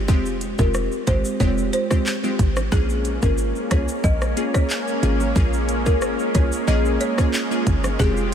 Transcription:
0.08 0.55 F1 loud
0.08 0.54 G#3 loud
0.08 0.55 C4 medium
0.08 0.55 F4 medium
0.08 0.55 G4 loud
0.08 kick loud
0.08 high bongo medium
0.08 shaker medium
0.26 shaker medium
0.41 closed hi-hat medium
0.41 shaker medium
0.58 0.89 F1 medium
0.58 1.03 G#3 medium
0.58 1.04 C4 medium
0.58 1.04 F4 medium
0.58 1.04 G4 medium
0.58 0.68 A#4 medium
0.58 kick medium
0.58 high bongo medium
0.58 shaker medium
0.74 cross-stick medium
0.74 shaker medium
0.92 shaker soft
1.07 1.23 G#1 loud
1.07 1.38 G#3 medium
1.07 1.38 C4 medium
1.07 1.38 F4 medium
1.07 1.38 G4 medium
1.07 1.18 C5 medium
1.07 kick medium
1.07 closed hi-hat medium
1.07 high bongo soft
1.07 shaker medium
1.25 shaker medium
1.40 1.70 F1 loud
1.40 1.86 G#3 loud
1.40 1.86 C4 medium
1.40 1.87 F4 medium
1.40 1.87 G4 loud
1.40 1.51 C#5 medium
1.40 kick loud
1.40 high bongo medium
1.40 shaker medium
1.58 shaker soft
1.73 1.84 C5 medium
1.73 closed hi-hat medium
1.73 shaker medium
1.90 2.08 G#3 medium
1.90 2.08 C4 medium
1.90 2.09 F4 medium
1.90 2.09 G4 medium
1.90 kick medium
1.90 cross-stick medium
1.90 high bongo medium
1.90 shaker medium
2.06 clap loud
2.06 shaker medium
2.23 2.41 G#3 medium
2.23 2.41 C4 medium
2.23 2.42 F4 medium
2.23 2.42 G4 medium
2.23 high bongo medium
2.23 shaker medium
2.39 2.69 G#1 medium
2.39 kick loud
2.39 closed hi-hat medium
2.39 low bongo medium
2.39 shaker medium
2.57 cross-stick loud
2.57 high bongo medium
2.57 shaker medium
2.72 3.19 A#1 loud
2.72 8.34 G#3 medium
2.72 2.91 A#3 medium
2.72 7.96 A#3 medium
2.72 2.92 C#4 medium
2.72 7.96 C#4 medium
2.72 2.92 F4 medium
2.72 2.83 G#4 loud
2.72 2.92 G#4 loud
2.72 kick loud
2.72 high bongo medium
2.72 shaker medium
2.90 shaker medium
3.05 closed hi-hat medium
3.05 shaker medium
3.22 3.53 G#1 loud
3.22 3.67 A#3 medium
3.22 3.67 C#4 medium
3.22 3.67 F4 medium
3.22 3.67 G#4 medium
3.22 3.32 A#4 medium
3.22 kick medium
3.22 shaker medium
3.38 shaker medium
3.56 shaker soft
3.71 3.87 C2 medium
3.71 4.01 A#3 medium
3.71 4.01 C#4 medium
3.71 4.02 F4 medium
3.71 4.02 G#4 medium
3.71 3.82 C#5 medium
3.71 kick medium
3.71 cross-stick loud
3.71 closed hi-hat medium
3.71 shaker medium
3.88 shaker medium
4.04 4.34 A#1 loud
4.04 4.15 D#5 medium
4.04 kick loud
4.04 high bongo medium
4.04 shaker medium
4.22 cross-stick medium
4.22 shaker soft
4.37 4.56 A#3 medium
4.37 4.56 C#4 medium
4.37 4.57 F4 medium
4.37 4.57 G#4 medium
4.37 closed hi-hat medium
4.37 shaker medium
4.54 4.64 C#5 medium
4.54 kick loud
4.54 cross-stick medium
4.54 shaker medium
4.70 clap loud
4.70 shaker medium
4.88 shaker medium
5.03 5.33 G#1 loud
5.03 5.22 A#3 medium
5.03 5.22 C#4 medium
5.03 5.22 F4 medium
5.03 5.23 G#4 medium
5.03 closed hi-hat medium
5.03 low bongo medium
5.03 shaker medium
5.20 high bongo medium
5.20 shaker medium
5.36 5.88 A#1 loud
5.36 5.82 A#3 medium
5.36 5.82 C#4 medium
5.36 5.82 F4 medium
5.36 5.82 G#4 loud
5.36 kick loud
5.36 high bongo medium
5.36 shaker medium
5.53 shaker medium
5.69 closed hi-hat medium
5.69 shaker medium
5.86 6.16 G#1 medium
5.86 6.31 A#3 medium
5.86 6.31 C#4 medium
5.86 6.31 F4 medium
5.86 6.31 G#4 medium
5.86 5.96 A#4 medium
5.86 kick loud
5.86 shaker medium
6.02 cross-stick medium
6.02 shaker medium
6.19 shaker soft
6.34 6.51 C2 loud
6.34 6.65 A#3 medium
6.34 6.65 C#4 medium
6.34 6.65 F4 medium
6.34 6.65 G#4 medium
6.34 6.46 C#5 medium
6.34 kick medium
6.34 closed hi-hat medium
6.34 shaker medium
6.52 shaker medium
6.67 6.98 A#1 loud
6.67 7.14 A#3 loud
6.67 7.14 C#4 medium
6.67 7.14 F4 medium
6.67 7.14 G#4 loud
6.67 6.79 D#5 medium
6.67 high bongo medium
6.67 shaker medium
6.85 shaker soft
7.01 7.12 C#5 medium
7.01 closed hi-hat medium
7.01 shaker medium
7.18 7.36 A#3 medium
7.18 7.36 C#4 medium
7.18 7.36 F4 medium
7.18 7.36 G#4 medium
7.18 kick loud
7.18 cross-stick medium
7.18 shaker medium
7.34 clap loud
7.34 shaker medium
7.51 7.69 A#3 medium
7.51 7.69 C#4 medium
7.51 7.69 F4 medium
7.51 7.69 G#4 medium
7.51 shaker medium
7.67 7.97 G1 medium
7.67 kick loud
7.67 closed hi-hat medium
7.67 low bongo medium
7.67 shaker medium
7.84 cross-stick loud
7.84 high bongo medium
7.84 shaker medium
7.99 8.34 F1 loud
7.99 8.19 G#3 loud
7.99 8.19 C4 medium
7.99 8.19 F4 medium
7.99 8.34 F4 medium
7.99 8.34 G4 medium
7.99 8.19 G4 loud
7.99 8.10 G#4 loud
7.99 kick loud
7.99 high bongo medium
7.99 shaker medium
8.17 shaker medium

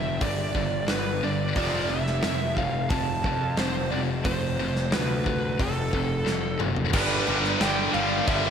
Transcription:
0.00 0.18 F1 medium
0.00 0.18 G2 medium
0.00 0.18 D3 medium
0.00 0.20 E5 medium
0.21 0.53 G1 loud
0.21 0.52 G2 medium
0.21 0.52 D3 medium
0.21 0.91 D5 loud
0.21 kick loud
0.21 open hi-hat medium
0.55 0.87 G1 medium
0.55 0.86 G2 medium
0.55 0.86 D3 medium
0.55 kick medium
0.88 1.21 G1 medium
0.88 1.20 G2 medium
0.88 1.20 D3 medium
0.88 1.24 B4 medium
0.88 snare medium
0.88 open hi-hat medium
1.23 1.54 G1 medium
1.23 1.53 G2 medium
1.23 1.53 D3 medium
1.23 1.55 D5 loud
1.56 1.88 F1 medium
1.56 1.88 F2 medium
1.56 1.88 C3 medium
1.56 1.88 F3 loud
1.56 1.90 D5 medium
1.56 kick loud
1.56 open hi-hat medium
1.90 2.22 F1 medium
1.90 2.20 F2 medium
1.90 2.20 C3 medium
1.90 2.57 E5 medium
2.07 snare soft
2.22 2.55 F1 medium
2.22 2.54 F2 medium
2.22 2.54 C3 medium
2.22 snare loud
2.22 open hi-hat soft
2.57 2.89 F1 medium
2.57 2.88 F2 medium
2.57 2.88 C3 medium
2.57 2.92 F5 loud
2.57 kick medium
2.90 3.22 F1 medium
2.90 3.22 F2 medium
2.90 3.22 C3 medium
2.90 3.60 A5 loud
2.90 kick loud
2.90 open hi-hat medium
3.24 3.56 F2 medium
3.24 3.56 C3 medium
3.24 kick medium
3.57 3.90 F1 medium
3.57 3.89 F2 medium
3.57 3.89 C3 medium
3.57 3.89 C5 medium
3.57 snare loud
3.57 open hi-hat soft
3.91 4.23 F1 medium
3.91 4.22 F2 medium
3.91 4.22 C3 medium
3.91 4.00 D5 medium
4.24 4.57 F1 medium
4.24 4.56 F2 medium
4.24 4.56 C3 medium
4.24 4.93 C5 medium
4.24 kick loud
4.24 open hi-hat medium
4.59 4.91 F1 loud
4.59 4.90 F2 medium
4.59 4.90 C3 medium
4.76 snare soft
4.92 5.56 D2 medium
4.92 5.23 F2 medium
4.92 5.23 C3 medium
4.92 5.61 B4 medium
4.92 snare loud
4.92 open hi-hat medium
5.26 5.57 F2 medium
5.26 5.57 C3 medium
5.26 kick medium
5.59 5.91 F1 medium
5.59 5.90 F2 medium
5.59 5.90 C3 medium
5.59 6.58 A4 medium
5.59 kick loud
5.59 open hi-hat medium
5.93 6.25 F1 medium
5.93 6.24 F2 medium
5.93 6.24 C3 medium
5.93 kick medium
6.26 6.58 F1 medium
6.26 6.57 F2 medium
6.26 6.57 C3 medium
6.26 snare medium
6.59 6.92 F#1 medium
6.59 6.90 F2 medium
6.59 6.90 C3 medium
6.59 mid tom medium
6.76 floor tom medium
6.93 7.20 G1 medium
6.93 7.26 G2 loud
6.93 7.26 D3 loud
6.93 7.28 G3 loud
6.93 7.64 B4 medium
6.93 kick loud
6.93 crash loud
6.93 crash medium
7.27 7.54 G1 medium
7.27 7.60 G2 medium
7.27 7.60 D3 loud
7.27 7.61 G3 loud
7.27 crash medium
7.44 snare soft
7.60 7.87 G1 medium
7.60 7.94 G2 medium
7.60 7.93 D3 medium
7.60 7.94 G3 loud
7.60 7.96 G5 loud
7.60 snare loud
7.60 crash medium
7.93 8.21 G1 medium
7.93 8.26 G2 medium
7.93 8.27 D3 medium
7.93 8.28 G3 medium
7.93 8.27 F5 loud
7.93 crash medium
8.27 8.50 G1 medium
8.27 8.50 G2 medium
8.27 8.50 D3 loud
8.27 8.50 G3 loud
8.27 8.50 E5 loud
8.27 kick loud
8.27 crash medium

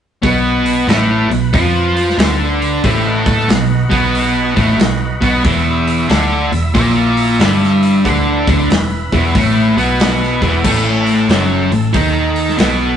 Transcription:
0.22 0.84 B1 loud
0.22 0.87 B2 medium
0.22 0.87 B3 medium
0.22 2.81 B4 medium
0.22 kick loud
0.22 open hi-hat medium
0.66 open hi-hat medium
0.88 1.27 A1 medium
0.88 1.29 A2 loud
0.88 1.30 A3 loud
0.88 snare medium
0.88 open hi-hat medium
1.30 1.52 B1 medium
1.30 1.48 B2 medium
1.30 open hi-hat medium
1.53 2.15 F2 loud
1.53 2.18 F3 medium
1.53 2.18 F4 loud
1.53 kick loud
1.53 open hi-hat medium
1.97 open hi-hat medium
2.10 snare soft
2.18 2.79 D2 medium
2.18 2.83 D3 medium
2.18 2.83 D4 loud
2.18 snare loud
2.18 open hi-hat medium
2.62 open hi-hat medium
2.84 3.23 A1 medium
2.84 3.25 A2 medium
2.84 3.25 A3 loud
2.84 3.05 E4 medium
2.84 3.05 G4 medium
2.84 3.06 C5 medium
2.84 kick loud
2.84 open hi-hat medium
3.05 5.41 D#4 medium
3.05 5.42 F#4 medium
3.05 5.42 B4 medium
3.26 3.47 A2 loud
3.26 3.48 A3 medium
3.26 3.49 A4 loud
3.26 kick loud
3.26 open hi-hat medium
3.48 3.88 B1 medium
3.48 3.82 B2 medium
3.48 snare loud
3.48 open hi-hat medium
3.89 4.53 B1 medium
3.89 4.54 B2 medium
3.89 4.55 B3 loud
3.89 kick loud
3.89 open hi-hat medium
4.15 open hi-hat medium
4.55 4.78 A1 medium
4.55 4.77 A2 medium
4.55 4.78 A3 loud
4.55 kick loud
4.55 open hi-hat medium
4.78 5.18 B1 medium
4.78 5.12 B2 medium
4.78 snare loud
4.78 open hi-hat medium
5.21 5.43 B1 medium
5.21 5.43 B2 medium
5.21 5.43 B3 loud
5.21 kick loud
5.21 open hi-hat medium
5.43 6.06 E1 medium
5.43 6.08 E2 medium
5.43 6.08 E3 loud
5.43 8.01 E4 medium
5.43 8.01 E5 medium
5.43 kick loud
5.43 open hi-hat medium
5.88 open hi-hat medium
6.08 6.48 D2 loud
6.08 6.50 D3 medium
6.08 6.50 D4 loud
6.08 snare medium
6.08 open hi-hat medium
6.51 6.73 E1 medium
6.51 6.69 E2 medium
6.51 open hi-hat medium
6.74 7.36 A#1 loud
6.74 7.38 A#2 loud
6.74 7.39 A#3 loud
6.74 kick loud
6.74 open hi-hat medium
7.17 open hi-hat medium
7.39 8.00 G1 medium
7.39 8.04 G2 medium
7.39 8.04 G3 loud
7.39 snare loud
7.39 open hi-hat medium
7.64 snare soft
7.83 open hi-hat medium
8.04 8.44 D2 medium
8.04 8.45 D3 medium
8.04 8.46 D4 loud
8.04 10.62 E4 medium
8.04 10.62 B4 medium
8.04 kick loud
8.04 open hi-hat medium
8.47 8.68 D2 medium
8.47 8.69 D3 loud
8.47 8.69 D4 loud
8.47 kick loud
8.47 open hi-hat medium
8.69 9.09 E1 medium
8.69 9.04 E2 medium
8.69 snare loud
8.69 open hi-hat medium
9.12 9.33 E1 medium
9.12 9.34 E2 medium
9.12 9.34 E3 medium
9.12 kick loud
9.12 open hi-hat medium
9.35 9.74 A1 medium
9.35 9.76 A2 medium
9.35 9.76 A3 loud
9.35 kick loud
9.35 open hi-hat medium
9.77 10.38 B1 medium
9.77 10.40 B2 medium
9.77 10.41 B3 medium
9.77 open hi-hat medium
10.00 snare loud
10.00 open hi-hat medium
10.23 snare soft
10.41 10.63 E1 medium
10.41 10.63 E2 medium
10.41 10.64 E3 loud
10.41 kick medium
10.41 open hi-hat soft
10.64 11.25 A1 loud
10.64 11.28 A2 medium
10.64 11.29 A3 loud
10.64 12.97 A4 medium
10.64 kick loud
10.64 crash loud
11.07 open hi-hat medium
11.28 11.68 F#1 medium
11.28 11.70 F#2 medium
11.28 11.71 F#3 loud
11.28 snare loud
11.28 open hi-hat medium
11.71 11.93 A1 medium
11.71 11.90 A2 medium
11.71 open hi-hat medium
11.93 12.55 D#2 loud
11.93 12.57 D#3 loud
11.93 12.58 D#4 loud
11.93 kick loud
11.93 open hi-hat medium
12.36 open hi-hat medium
12.49 snare soft
12.57 12.97 B1 medium
12.57 12.97 B2 loud
12.57 12.97 B3 medium
12.57 snare loud
12.57 open hi-hat medium

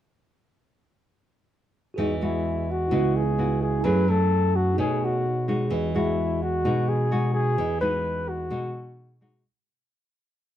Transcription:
1.94 2.89 E3 soft
1.94 2.87 F#4 soft
1.94 2.88 G#4 soft
1.94 2.89 B4 soft
1.98 2.87 E2 medium
1.98 2.12 G#3 soft
1.98 2.12 D#4 soft
1.98 2.12 F#4 soft
1.98 2.90 D#5 medium
2.21 2.88 G#3 medium
2.21 2.72 E4 medium
2.21 2.88 F#4 medium
2.71 3.18 F#4 medium
2.88 3.82 C#3 soft
2.88 3.21 B3 soft
2.88 3.79 E4 soft
2.88 3.82 F#4 soft
2.88 3.83 B4 soft
2.92 3.81 C#2 medium
2.92 3.21 E4 medium
2.92 3.22 F#4 medium
2.92 3.84 D#5 soft
3.16 3.62 G#4 medium
3.38 3.83 B3 soft
3.38 3.83 E4 soft
3.38 3.83 F#4 soft
3.62 3.86 G#4 medium
3.80 4.74 E4 soft
3.80 4.74 G#5 soft
3.84 4.74 F#2 medium
3.84 4.75 F#3 soft
3.84 4.04 A3 medium
3.84 4.04 E4 medium
3.84 4.05 G#4 medium
3.84 4.11 B4 medium
3.84 4.77 C#5 soft
4.08 4.74 A3 medium
4.08 4.74 E4 medium
4.08 4.57 A4 medium
4.56 4.79 F#4 medium
4.74 5.67 D#4 soft
4.74 5.68 G#4 soft
4.78 5.67 B2 medium
4.78 5.69 B2 soft
4.78 5.24 A3 soft
4.78 5.25 D#4 soft
4.78 5.06 G#4 medium
4.78 5.25 G#4 medium
4.78 5.70 C#5 soft
5.04 5.50 F#4 medium
5.48 5.91 G#3 soft
5.48 5.91 D#4 medium
5.48 5.91 F#4 medium
5.68 6.60 E2 medium
5.68 6.62 E3 soft
5.68 7.53 F#4 medium
5.68 7.54 G#4 soft
5.68 7.54 B4 soft
5.74 7.55 D#5 medium
5.95 6.61 G#3 medium
5.95 6.44 E4 medium
5.95 6.61 F#4 medium
6.42 6.90 F#4 medium
6.64 7.54 B2 medium
6.64 7.56 B2 soft
6.64 7.08 G#3 soft
6.64 7.08 D#4 soft
6.64 7.08 F#4 medium
6.89 7.33 G#4 medium
7.11 7.58 G#3 soft
7.11 7.58 D#4 soft
7.11 7.58 F#4 medium
7.34 7.78 G#4 medium
7.54 8.47 E2 medium
7.54 8.49 E3 soft
7.54 9.39 F#4 soft
7.54 9.40 G#4 soft
7.54 9.41 B4 soft
7.61 9.42 D#5 soft
7.81 8.48 G#3 medium
7.81 8.48 D#4 medium
7.81 8.48 F#4 medium
7.81 8.30 B4 medium
8.29 9.22 F#4 medium
8.50 9.42 B2 soft
8.50 9.41 B2 medium
8.50 9.17 G#3 soft
8.50 9.18 D#4 soft
8.50 9.18 F#4 medium
9.21 9.43 G#3 medium
9.21 9.43 D#4 medium
9.21 9.43 F#4 medium

